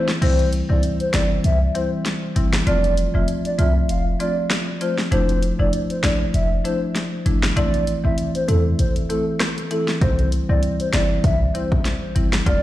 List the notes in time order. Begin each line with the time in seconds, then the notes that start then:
Already playing: E3 A3 C4 E4
0.08 snare
0.22 C2 E3 G3 C4 E4 C5, closed hi-hat, crash
0.39 closed hi-hat
0.53 closed hi-hat
0.69 C2 E3 G3 C4 E4 D5
0.83 closed hi-hat
1.00 C5, closed hi-hat
1.13 G1 E3 G3 C4 E4 D5, snare, closed hi-hat
1.44 C2 E5, closed hi-hat
1.75 E3 G3 C4 E4 C5, closed hi-hat
2.06 snare, closed hi-hat
2.36 G1 E3 G3 C4 E4, closed hi-hat
2.53 snare
2.66 F1 F3 A3 C4 F4 D5, closed hi-hat
2.84 closed hi-hat
2.97 closed hi-hat
3.14 F1 F3 A3 C4 F4 E5
3.28 closed hi-hat
3.45 D5, closed hi-hat
3.58 C2 F3 A3 C4 F4 E5, closed hi-hat
3.89 F1 F5, closed hi-hat
4.20 F3 A3 C4 F4 D5, closed hi-hat
4.50 snare, closed hi-hat
4.81 F3 A3 C4 F4 C5, closed hi-hat
4.98 snare
5.11 F1 F3 A3 D4 E4 C5, closed hi-hat
5.29 closed hi-hat
5.43 closed hi-hat
5.59 F1 F3 A3 D4 E4 D5
5.73 closed hi-hat
5.90 C5, closed hi-hat
6.03 A1 F3 A3 D4 E4 D5, snare, closed hi-hat
6.34 F1 E5, closed hi-hat
6.64 F3 A3 D4 E4 C5, closed hi-hat
6.95 snare, closed hi-hat
7.26 G1 F3 A3 D4 E4, closed hi-hat
7.43 snare
7.56 A1 E3 A3 C4 E4 D5, closed hi-hat
7.74 closed hi-hat
7.87 closed hi-hat
8.04 A1 E3 A3 C4 E4 E5
8.18 closed hi-hat
8.35 C5, closed hi-hat
8.48 E2 E3 A3 C4 E4 A4, closed hi-hat
8.79 A1 C5, closed hi-hat
8.96 closed hi-hat
9.09 E3 A3 C4 E4 A4, closed hi-hat
9.40 cross-stick, snare, closed hi-hat
9.58 closed hi-hat
9.71 E3 A3 C4 E4 A4, closed hi-hat
9.88 snare
10.01 C2 E3 G3 C4 E4 C5, kick, closed hi-hat
10.19 closed hi-hat
10.32 closed hi-hat
10.49 C2 E3 G3 C4 E4 D5
10.63 closed hi-hat
10.80 C5, closed hi-hat
10.93 G1 E3 G3 C4 E4 D5, snare, closed hi-hat
11.24 C2 E5, kick, closed hi-hat
11.54 E3 G3 C4 E4 C5, closed hi-hat
11.72 kick
11.85 snare, closed hi-hat
12.15 G1 E3 G3 C4 E4, closed hi-hat
12.33 snare
12.46 F1 F3 A3 C4 F4 D5, kick, closed hi-hat